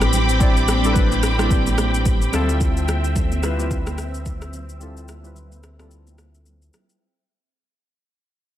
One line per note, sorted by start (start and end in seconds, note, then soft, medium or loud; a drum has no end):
0.00 2.29 A1 medium
0.00 0.40 G3 medium
0.00 0.40 C4 medium
0.00 2.29 C4 medium
0.00 0.41 D4 medium
0.00 0.42 E4 medium
0.00 1.41 G4 medium
0.00 0.93 B4 loud
0.00 6.97 G5 medium
0.00 2.29 B5 medium
0.00 2.29 D6 medium
0.00 cross-stick medium
0.00 shaker medium
0.13 high conga soft
0.13 low conga medium
0.13 shaker medium
0.29 shaker medium
0.40 0.74 G3 medium
0.40 0.74 C4 medium
0.40 0.75 D4 medium
0.40 0.75 E4 medium
0.40 0.75 D5 medium
0.40 kick loud
0.40 shaker medium
0.57 shaker soft
0.68 cross-stick medium
0.68 high conga medium
0.68 shaker medium
0.83 1.26 G3 medium
0.83 1.26 C4 medium
0.83 1.27 D4 medium
0.83 1.27 E4 medium
0.83 0.91 A4 medium
0.83 shaker soft
0.93 1.31 B4 medium
0.93 kick medium
0.93 low conga medium
0.93 shaker medium
1.12 high conga medium
1.12 shaker soft
1.23 cross-stick medium
1.23 shaker loud
1.38 2.26 G3 medium
1.38 2.26 C4 medium
1.38 2.27 D4 medium
1.38 2.27 E4 medium
1.38 2.27 G4 medium
1.38 cross-stick medium
1.38 high conga medium
1.38 shaker soft
1.51 kick loud
1.51 shaker medium
1.67 high conga medium
1.67 shaker medium
1.78 cross-stick medium
1.78 high conga medium
1.78 shaker medium
1.94 shaker medium
2.06 kick medium
2.06 high conga medium
2.06 low conga medium
2.06 shaker medium
2.22 shaker soft
2.32 6.70 D2 medium
2.32 3.22 G3 medium
2.32 3.22 C4 medium
2.32 6.97 C4 medium
2.32 3.22 E4 medium
2.32 3.23 F4 medium
2.32 3.23 A4 loud
2.32 6.97 E5 medium
2.32 6.97 E6 medium
2.32 cross-stick medium
2.32 high conga medium
2.32 low conga medium
2.32 shaker medium
2.49 shaker medium
2.61 kick loud
2.61 shaker medium
2.77 shaker soft
2.88 cross-stick medium
2.88 high conga medium
2.88 shaker medium
3.04 shaker soft
3.15 kick medium
3.15 low conga medium
3.15 shaker medium
3.32 high conga medium
3.32 shaker soft
3.42 3.56 G3 medium
3.42 3.56 C4 medium
3.42 3.56 E4 medium
3.42 3.57 F4 medium
3.42 3.57 B4 loud
3.42 cross-stick medium
3.42 shaker loud
3.58 4.46 G3 medium
3.58 4.46 C4 medium
3.58 4.47 E4 medium
3.58 4.47 F4 medium
3.58 4.47 B4 medium
3.58 high conga medium
3.58 shaker soft
3.71 kick loud
3.71 shaker medium
3.87 cross-stick medium
3.87 high conga medium
3.87 shaker medium
3.98 cross-stick medium
3.98 high conga medium
3.98 shaker medium
4.14 shaker medium
4.26 kick medium
4.26 high conga medium
4.26 low conga medium
4.26 shaker medium
4.42 cross-stick medium
4.42 shaker soft
4.53 high conga medium
4.53 low conga medium
4.53 shaker medium
4.69 shaker medium
4.80 5.14 G3 medium
4.80 5.15 C4 medium
4.80 5.15 E4 medium
4.80 5.15 F4 medium
4.80 5.16 A4 medium
4.80 shaker medium
4.97 shaker medium
5.08 cross-stick medium
5.08 high conga medium
5.08 shaker medium
5.23 5.66 G3 medium
5.23 5.67 C4 medium
5.23 5.67 E4 medium
5.23 5.67 F4 medium
5.23 5.68 B4 medium
5.23 shaker soft
5.36 low conga medium
5.36 shaker medium
5.52 high conga medium
5.52 shaker soft
5.63 cross-stick medium
5.63 shaker loud
5.79 6.66 G3 medium
5.79 6.67 C4 medium
5.79 6.67 E4 medium
5.79 6.67 F4 medium
5.79 6.68 A4 medium
5.79 cross-stick medium
5.79 high conga medium
5.79 shaker soft
5.91 shaker medium
6.07 high conga medium
6.07 shaker medium
6.18 cross-stick medium
6.18 high conga medium
6.18 shaker medium
6.35 shaker medium
6.46 high conga medium
6.46 low conga medium
6.46 shaker medium
6.62 shaker soft
6.73 cross-stick medium
6.73 high conga medium
6.73 low conga medium
6.73 shaker medium
6.90 shaker medium